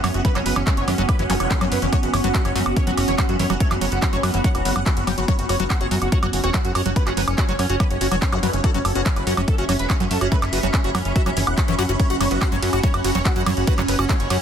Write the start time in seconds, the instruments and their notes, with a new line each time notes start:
Already playing: synth drone B3 C#4, ambient pad F#4 C#5 F#5
0.04 analog synth bass F#2, acid bass F#3, supersaw synth C#5, open hi-hat, high woodblock
0.14 analog synth bass F#1, supersaw synth F#4, closed hi-hat
0.25 acid bass E3, supersaw synth B4, kick, closed hi-hat
0.35 analog synth bass F#1, acid bass F#3, supersaw synth C#4, clap, closed hi-hat, high woodblock
0.46 analog synth bass F#1, supersaw synth B4, open hi-hat
0.56 analog synth bass F#1, acid bass E3, supersaw synth C#4, synth arpeggio sound C#4, high woodblock
0.67 acid bass F#3, synth arpeggio sound C#4, supersaw synth C#4, kick, clap, closed hi-hat
0.77 analog synth bass F#1, supersaw synth C#5, closed hi-hat
0.88 analog synth bass F#2, acid bass E3, supersaw synth C#4, open hi-hat, high woodblock
0.98 analog synth bass F#1, acid bass F#3, supersaw synth C#4, closed hi-hat
1.09 supersaw synth B4, kick, closed hi-hat, high woodblock
1.19 analog synth bass F#1, acid bass E3, supersaw synth C#4, closed hi-hat
1.30 analog synth bass F#1, acid bass F#3, supersaw synth C#4, open hi-hat, zap
1.40 analog synth bass E1, supersaw synth C#5, closed hi-hat, high woodblock
1.51 acid bass E3, supersaw synth C#4, kick, clap, closed hi-hat
1.61 analog synth bass F#2, acid bass F#3, supersaw synth C#4, closed hi-hat, high woodblock
1.72 analog synth bass F#2, supersaw synth B4, open hi-hat
1.82 analog synth bass F#1, acid bass E3, supersaw synth C#4, closed hi-hat
1.93 acid bass F#3, supersaw synth C#5, kick, closed hi-hat, high woodblock
2.03 analog synth bass F#1, supersaw synth F#4, closed hi-hat
2.13 analog synth bass F#1, acid bass E3, supersaw synth C#5, open hi-hat, high woodblock
2.24 analog synth bass F#1, acid bass F#3, synth arpeggio sound B3, supersaw synth F#4, closed hi-hat
2.35 supersaw synth F#4, kick, clap, closed hi-hat
2.45 analog synth bass F#1, acid bass E3, supersaw synth C#5, closed hi-hat, high woodblock
2.55 analog synth bass F#2, acid bass F#3, supersaw synth F#4, open hi-hat
2.66 analog synth bass F#1, supersaw synth F#4, closed hi-hat, high woodblock
2.76 acid bass E3, supersaw synth C#5, kick, closed hi-hat
2.87 analog synth bass F#1, acid bass F#3, supersaw synth F#4, closed hi-hat
2.94 analog synth bass F#1, supersaw synth F#4, ambient pad B5, open hi-hat, high woodblock
3.08 analog synth bass E1, acid bass E3, supersaw synth C#5, closed hi-hat
3.18 acid bass F#3, supersaw synth F#4, kick, clap, closed hi-hat, high woodblock
3.29 analog synth bass F#2, supersaw synth F#4, closed hi-hat
3.39 analog synth bass F#2, acid bass E3, supersaw synth C#5, open hi-hat
3.50 analog synth bass F#1, acid bass F#3, supersaw synth F#4, closed hi-hat, high woodblock
3.60 synth arpeggio sound A3, supersaw synth C#5, kick, closed hi-hat
3.71 analog synth bass F#1, acid bass E3, supersaw synth F#4, clap, closed hi-hat, high woodblock
3.81 analog synth bass F#1, acid bass F#3, supersaw synth C#5, open hi-hat
3.92 analog synth bass F#1, supersaw synth F#4, closed hi-hat
4.02 acid bass E3, synth arpeggio sound C#4, supersaw synth F#4, kick, clap, closed hi-hat, high woodblock
4.13 analog synth bass F#1, acid bass F#3, supersaw synth C#5, closed hi-hat
4.23 analog synth bass F#2, supersaw synth F#4, open hi-hat, high woodblock
4.34 analog synth bass F#1, acid bass E3, supersaw synth F#4, closed hi-hat
4.44 acid bass F#3, supersaw synth F#5, kick, closed hi-hat
4.55 analog synth bass E1, supersaw synth F#4, closed hi-hat, high woodblock
4.65 analog synth bass F#1, supersaw synth F#4, open hi-hat
4.76 analog synth bass F#1, acid bass F#3, supersaw synth F#5, closed hi-hat, high woodblock
4.86 acid bass E3, supersaw synth F#4, kick, clap, closed hi-hat
4.97 analog synth bass F#1, supersaw synth F#4, closed hi-hat
5.07 analog synth bass F#1, acid bass F#3, supersaw synth G5, open hi-hat, high woodblock
5.18 analog synth bass F#1, acid bass F#3, supersaw synth F#4, closed hi-hat
5.28 acid bass F#3, synth drone C#4 C#5, supersaw synth C#5, kick, closed hi-hat
5.39 analog synth bass F#1, supersaw synth F#4, closed hi-hat
5.49 analog synth bass F#1, acid bass F#4, supersaw synth C#5, open hi-hat, high woodblock
5.60 analog synth bass F#1, acid bass F#3, synth arpeggio sound B3, supersaw synth F#4, closed hi-hat
5.70 supersaw synth F#4, kick, clap, closed hi-hat, high woodblock
5.81 analog synth bass F#1, acid bass F#4, supersaw synth C#5, closed hi-hat
5.91 analog synth bass F#2, acid bass F#3, supersaw synth F#4, open hi-hat
6.02 analog synth bass F#1, supersaw synth F#4, closed hi-hat, high woodblock
6.12 acid bass F#4, supersaw synth C#5, kick, closed hi-hat
6.23 analog synth bass F#1, acid bass F#3, supersaw synth F#4, closed hi-hat, high woodblock
6.29 analog synth bass F#1, supersaw synth F#4, ambient pad F#5, open hi-hat
6.44 analog synth bass E1, synth arpeggio sound C#4, acid bass F#4, supersaw synth C#5, closed hi-hat
6.54 acid bass F#3, supersaw synth F#4, kick, clap, closed hi-hat, high woodblock
6.65 analog synth bass F#2, supersaw synth F#4, closed hi-hat
6.75 analog synth bass F#2, acid bass F#4, supersaw synth C#5, open hi-hat, high woodblock
6.86 analog synth bass F#1, acid bass F#3, supersaw synth F#4, closed hi-hat
6.96 supersaw synth B4, kick, closed hi-hat
7.07 analog synth bass F#1, supersaw synth C#4, acid bass F#4, clap, closed hi-hat, high woodblock
7.17 analog synth bass F#1, acid bass F#3, supersaw synth B4, open hi-hat
7.28 analog synth bass F#1, synth arpeggio sound C#4, supersaw synth C#4, closed hi-hat, high woodblock
7.38 supersaw synth C#4, synth arpeggio sound C#4, acid bass F#4, kick, clap, closed hi-hat
7.49 analog synth bass F#1, acid bass F#3, supersaw synth C#5, closed hi-hat
7.59 analog synth bass F#2, supersaw synth C#4, open hi-hat, high woodblock
7.70 analog synth bass F#1, supersaw synth C#4, acid bass F#4, closed hi-hat
7.80 acid bass F#3, supersaw synth B4, kick, closed hi-hat, high woodblock
7.90 analog synth bass F#1, supersaw synth C#4, closed hi-hat
8.01 analog synth bass F#1, supersaw synth C#4, acid bass F#4, open hi-hat
8.11 analog synth bass E1, acid bass F#3, supersaw synth C#5, closed hi-hat, high woodblock
8.22 supersaw synth C#4, kick, clap, closed hi-hat
8.32 analog synth bass F#2, supersaw synth C#4, acid bass F#4, closed hi-hat, zap, high woodblock
8.43 analog synth bass F#2, acid bass F#3, supersaw synth B4, open hi-hat
8.53 analog synth bass F#1, supersaw synth C#4, closed hi-hat
8.64 acid bass F#4, supersaw synth A4, synth drone E5, kick, closed hi-hat, high woodblock
8.74 analog synth bass F#1, acid bass F#3, supersaw synth C#4, closed hi-hat
8.85 analog synth bass F#1, supersaw synth A4, open hi-hat, high woodblock
8.95 analog synth bass F#1, synth arpeggio sound B3, supersaw synth C#4, acid bass F#4, closed hi-hat
9.06 acid bass F#3, supersaw synth C#4, kick, clap, closed hi-hat
9.16 analog synth bass F#1, supersaw synth B4, closed hi-hat, high woodblock
9.27 analog synth bass F#2, supersaw synth C#4, acid bass F#4, open hi-hat
9.37 analog synth bass F#1, acid bass F#3, supersaw synth C#4, closed hi-hat, high woodblock
9.48 supersaw synth A4, kick, closed hi-hat
9.58 analog synth bass F#1, supersaw synth C#4, acid bass F#4, closed hi-hat
9.65 analog synth bass F#1, acid bass F#3, supersaw synth C#4, ambient pad B5, open hi-hat, high woodblock
9.79 analog synth bass E1, supersaw synth B4, closed hi-hat
9.90 supersaw synth C#4, acid bass F#4, kick, clap, closed hi-hat, high woodblock
10.00 analog synth bass F#2, acid bass F#3, supersaw synth C#4, closed hi-hat
10.11 analog synth bass F#2, supersaw synth A4, open hi-hat
10.21 analog synth bass F#1, supersaw synth C#4, acid bass F#4, closed hi-hat, high woodblock
10.32 acid bass F#3, synth arpeggio sound A3, supersaw synth B4, kick, closed hi-hat
10.42 analog synth bass F#1, supersaw synth C#4, clap, closed hi-hat, high woodblock
10.53 analog synth bass F#1, acid bass F#4, supersaw synth B4, open hi-hat
10.63 analog synth bass F#1, acid bass F#3, supersaw synth C#4, closed hi-hat
10.74 synth arpeggio sound C#4, supersaw synth C#4, kick, clap, closed hi-hat, high woodblock
10.84 analog synth bass F#1, acid bass F#4, supersaw synth C#5, closed hi-hat
10.95 analog synth bass F#2, acid bass F#3, supersaw synth C#4, open hi-hat, high woodblock
11.05 analog synth bass F#1, supersaw synth C#4, closed hi-hat
11.16 acid bass F#4, supersaw synth E5, kick, closed hi-hat
11.26 analog synth bass F#1, acid bass F#3, supersaw synth C#4, closed hi-hat, high woodblock
11.37 analog synth bass F#1, acid bass E3, supersaw synth C#4, open hi-hat
11.47 analog synth bass E1, supersaw synth F#5, closed hi-hat, high woodblock
11.58 supersaw synth C#4, acid bass F#4, kick, clap, closed hi-hat
11.68 analog synth bass F#2, acid bass E3, supersaw synth C#4, closed hi-hat
11.79 analog synth bass F#2, acid bass F#4, supersaw synth F#5, open hi-hat, high woodblock
11.89 analog synth bass F#1, supersaw synth C#4, acid bass F#4, closed hi-hat
12.00 synth drone C#5, supersaw synth C#5, kick, closed hi-hat, ride
12.10 analog synth bass F#1, supersaw synth F#4, acid bass F#4, closed hi-hat
12.21 analog synth bass F#1, acid bass F#3, supersaw synth C#5, open hi-hat, ride, high woodblock
12.31 analog synth bass F#1, synth arpeggio sound B3, supersaw synth F#4, closed hi-hat
12.42 supersaw synth F#4, acid bass F#4, kick, clap, closed hi-hat, ride, high woodblock
12.52 analog synth bass F#1, acid bass F#3, supersaw synth C#5, closed hi-hat
12.62 analog synth bass F#2, supersaw synth F#4, open hi-hat, ride
12.73 analog synth bass F#1, supersaw synth F#4, acid bass F#4, closed hi-hat, high woodblock
12.83 acid bass F#3, supersaw synth C#5, kick, closed hi-hat, ride
12.94 analog synth bass F#1, supersaw synth F#4, closed hi-hat, high woodblock
13.01 analog synth bass F#1, supersaw synth F#4, acid bass F#4, ambient pad F#5, open hi-hat, ride
13.15 analog synth bass E1, acid bass F#3, synth arpeggio sound C#4, supersaw synth C#5, closed hi-hat
13.25 supersaw synth F#4, kick, clap, closed hi-hat, ride, high woodblock
13.36 analog synth bass F#2, acid bass F#4, supersaw synth F#4, closed hi-hat
13.46 analog synth bass F#2, acid bass F#3, supersaw synth C#5, open hi-hat, ride, high woodblock
13.57 analog synth bass F#1, supersaw synth F#4, closed hi-hat
13.67 acid bass F#4, supersaw synth B4, kick, closed hi-hat, ride
13.78 analog synth bass F#1, acid bass F#3, supersaw synth C#4, clap, closed hi-hat, high woodblock
13.88 analog synth bass F#1, supersaw synth B4, open hi-hat, ride
13.99 analog synth bass F#1, supersaw synth C#4, synth arpeggio sound C#4, acid bass F#4, closed hi-hat, high woodblock
14.09 acid bass F#3, supersaw synth C#4, synth arpeggio sound C#4, kick, clap, closed hi-hat, ride
14.20 analog synth bass F#1, supersaw synth C#5, closed hi-hat
14.30 analog synth bass F#2, supersaw synth C#4, acid bass F#4, open hi-hat, ride, high woodblock